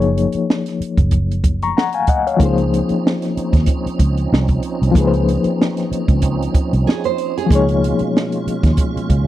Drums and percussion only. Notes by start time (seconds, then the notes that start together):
0.02 closed hi-hat
0.18 closed hi-hat
0.32 closed hi-hat
0.50 snare
0.66 snare, closed hi-hat
0.82 closed hi-hat
0.97 kick, closed hi-hat
1.11 kick, closed hi-hat
1.32 closed hi-hat
1.44 kick, closed hi-hat
1.62 closed hi-hat
1.78 snare
1.93 closed hi-hat
2.07 kick, closed hi-hat
2.27 closed hi-hat
2.40 kick, closed hi-hat
2.58 closed hi-hat
2.74 closed hi-hat
2.89 closed hi-hat
3.07 snare
3.22 snare, closed hi-hat
3.37 closed hi-hat
3.53 kick, snare, closed hi-hat
3.66 kick, closed hi-hat
3.87 closed hi-hat
3.99 kick, closed hi-hat
4.17 closed hi-hat
4.34 snare
4.48 kick, closed hi-hat
4.63 closed hi-hat
4.83 closed hi-hat
4.95 kick, closed hi-hat
5.14 closed hi-hat
5.29 closed hi-hat
5.44 closed hi-hat
5.62 snare
5.77 snare, closed hi-hat
5.93 closed hi-hat
6.08 kick, closed hi-hat
6.22 kick, closed hi-hat
6.42 closed hi-hat
6.54 kick, closed hi-hat
6.73 closed hi-hat
6.89 snare
7.04 closed hi-hat
7.18 closed hi-hat
7.38 closed hi-hat
7.50 kick, closed hi-hat
7.69 closed hi-hat
7.84 closed hi-hat
7.99 closed hi-hat
8.17 snare
8.32 closed hi-hat
8.48 closed hi-hat
8.63 kick, snare, closed hi-hat
8.77 kick, closed hi-hat
8.97 closed hi-hat
9.10 kick, closed hi-hat